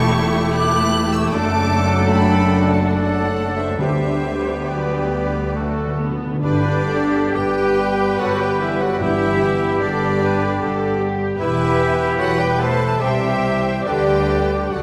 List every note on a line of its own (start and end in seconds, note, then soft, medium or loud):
0.00 1.33 E1 loud
0.00 1.33 E2 loud
0.00 3.48 A3 medium
0.00 3.74 A3 loud
0.00 1.29 E4 loud
0.00 1.29 G4 loud
0.00 1.34 G4 loud
0.00 3.75 A4 medium
0.00 0.27 A5 loud
0.00 0.53 C#6 loud
0.53 1.10 D6 loud
0.53 1.13 F#6 loud
1.13 1.36 C#6 medium
1.13 1.33 E6 loud
1.30 3.75 F#1 medium
1.30 3.74 F#2 medium
1.30 2.88 F#3 medium
1.30 2.88 A3 medium
1.30 2.88 D4 medium
1.30 4.55 D4 medium
1.30 3.74 F#4 medium
1.30 3.49 A4 medium
1.30 2.89 A4 medium
1.30 2.11 D6 loud
1.35 2.14 A5 medium
2.10 2.74 G5 medium
2.10 2.70 B5 loud
2.73 2.95 F#5 medium
2.73 2.93 A5 medium
2.93 3.78 F#3 medium
2.93 3.78 A3 medium
2.93 3.76 D4 medium
2.93 3.77 A4 medium
2.93 3.59 D5 medium
2.93 3.57 F#5 medium
3.58 3.78 C5 medium
3.58 3.78 E5 medium
3.77 6.21 D2 medium
3.77 6.22 D2 medium
3.77 5.08 D3 medium
3.77 4.66 D3 medium
3.77 4.55 G3 medium
3.77 4.66 G3 medium
3.77 4.68 B3 medium
3.77 5.57 B3 medium
3.77 4.65 D4 medium
3.77 5.51 G4 medium
3.77 4.68 G4 medium
3.77 5.57 G4 medium
3.77 5.51 B4 medium
3.77 4.71 C5 medium
3.77 4.66 E5 medium
4.67 5.53 D3 medium
4.67 5.09 F#3 medium
4.67 5.53 G3 medium
4.67 5.54 B3 medium
4.67 5.53 D4 medium
4.67 5.54 G4 medium
4.67 5.99 B4 medium
4.67 5.99 D5 medium
5.12 5.55 G3 medium
5.54 6.08 D3 medium
5.54 5.62 D3 soft
5.54 6.08 F#3 medium
5.54 6.08 A3 medium
5.54 5.98 A3 medium
5.54 6.09 A3 medium
5.54 6.07 D4 medium
5.54 6.09 F#4 medium
5.54 6.18 F#4 medium
5.54 6.09 A4 medium
5.54 6.18 A4 medium
5.63 5.70 D3 soft
5.71 5.78 D3 soft
5.79 5.86 D3 medium
5.87 5.94 D3 medium
5.95 6.02 D3 medium
5.95 6.42 B3 medium
6.03 6.09 D3 medium
6.10 6.17 D3 medium
6.19 6.25 D3 medium
6.26 6.33 D3 medium
6.34 6.41 D3 loud
6.41 7.24 G1 medium
6.41 7.74 G2 medium
6.41 7.24 G2 medium
6.41 7.31 D3 medium
6.41 11.35 G3 medium
6.41 11.35 B3 medium
6.41 7.37 D4 medium
6.41 7.30 D4 medium
6.41 7.37 D4 medium
6.41 11.36 G4 medium
6.41 7.37 G4 medium
6.41 6.85 B4 medium
6.41 7.30 D5 loud
6.89 7.35 A4 medium
7.34 8.10 G1 medium
7.34 8.10 G2 medium
7.34 8.20 G3 medium
7.34 8.19 G4 medium
7.34 7.78 G4 medium
7.34 8.22 G4 medium
7.34 8.21 B4 loud
7.34 8.17 G5 loud
7.78 9.01 B4 medium
8.18 8.91 G1 medium
8.18 8.91 G2 medium
8.18 8.39 F#3 medium
8.18 8.39 F#4 medium
8.18 8.42 F#4 medium
8.18 8.42 A4 medium
8.18 8.39 F#5 loud
8.39 8.60 G3 medium
8.39 8.59 G4 medium
8.39 8.64 G4 medium
8.39 8.62 G4 medium
8.39 8.64 B4 medium
8.39 8.60 G5 medium
8.60 8.80 E3 medium
8.60 8.80 E4 medium
8.60 8.84 E4 medium
8.60 8.84 G4 medium
8.60 8.80 E5 medium
8.80 9.01 F#3 medium
8.80 9.00 F#4 medium
8.80 9.01 F#4 medium
8.80 9.03 F#4 medium
8.80 9.03 A4 medium
8.80 9.01 F#5 medium
9.00 9.72 G1 medium
9.00 9.71 G2 medium
9.00 10.17 G2 medium
9.00 9.81 E3 medium
9.00 9.80 E4 medium
9.00 9.81 E4 medium
9.00 9.84 E4 medium
9.00 9.80 G4 medium
9.00 9.79 G4 medium
9.00 9.79 E5 loud
9.79 10.51 G1 medium
9.79 10.51 G2 medium
9.79 10.99 D3 medium
9.79 11.00 D4 medium
9.79 10.98 D4 medium
9.79 11.01 D4 medium
9.79 10.97 G4 medium
9.79 10.21 A4 medium
9.79 10.98 D5 loud
10.22 10.60 B4 medium
10.60 11.30 G1 medium
10.60 11.31 G2 medium
10.60 11.00 A4 medium
11.00 11.39 G4 medium
11.39 12.10 E1 medium
11.39 12.10 E2 medium
11.39 12.97 E3 medium
11.39 12.16 E3 medium
11.39 12.97 B3 medium
11.39 12.21 E4 medium
11.39 12.21 E4 loud
11.39 12.15 E4 medium
11.39 12.84 G4 medium
11.39 12.15 G4 medium
11.39 12.17 B4 medium
11.39 12.14 E5 loud
12.18 12.91 E1 medium
12.18 12.91 E2 medium
12.18 12.38 F#3 medium
12.18 12.39 F#4 medium
12.18 12.41 F#4 medium
12.18 12.40 F#4 medium
12.18 12.40 A4 medium
12.18 12.99 B4 medium
12.18 12.39 F#5 loud
12.38 12.59 G3 medium
12.38 12.61 G4 medium
12.38 12.59 G4 medium
12.38 12.62 G4 medium
12.38 12.59 B4 medium
12.38 12.60 G5 loud
12.59 13.00 A3 medium
12.59 13.00 A4 medium
12.59 13.02 A4 loud
12.59 13.03 A4 medium
12.59 13.00 C5 medium
12.59 13.01 A5 loud
13.00 13.76 C2 medium
13.00 13.76 C3 medium
13.00 13.85 E3 medium
13.00 13.84 G3 medium
13.00 13.87 C4 medium
13.00 13.86 G4 medium
13.00 13.84 G4 medium
13.00 13.86 G4 medium
13.00 13.88 C5 medium
13.00 13.84 E5 medium
13.00 13.84 G5 medium
13.85 14.62 D2 medium
13.85 14.56 D3 medium
13.85 14.62 D3 medium
13.85 14.70 G3 medium
13.85 14.56 A3 medium
13.85 14.71 D4 medium
13.85 14.70 G4 medium
13.85 14.73 G4 medium
13.85 14.75 G4 medium
13.85 14.72 B4 medium
13.85 14.64 D5 medium
13.85 14.70 G5 loud
14.71 14.83 D2 medium
14.71 14.83 D3 medium
14.71 14.83 F#3 medium
14.71 14.83 A3 medium
14.71 14.83 D4 medium
14.71 14.83 F#4 medium
14.71 14.83 A4 medium
14.71 14.83 D5 medium
14.71 14.83 F#5 medium